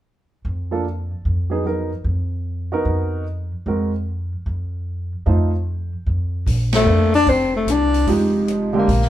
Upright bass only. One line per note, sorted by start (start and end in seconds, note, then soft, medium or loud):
0.45 1.10 F2 medium
1.25 1.90 F2 medium
2.04 2.70 F2 medium
2.85 3.50 F2 medium
3.66 4.31 F2 medium
4.46 5.11 F2 medium
5.26 5.92 F2 medium
6.06 6.44 F2 medium
6.46 6.84 A#1 medium
6.86 7.24 F2 medium
7.27 7.64 F1 medium
7.67 8.04 C2 medium
8.07 8.83 F1 medium
8.88 9.09 A#1 medium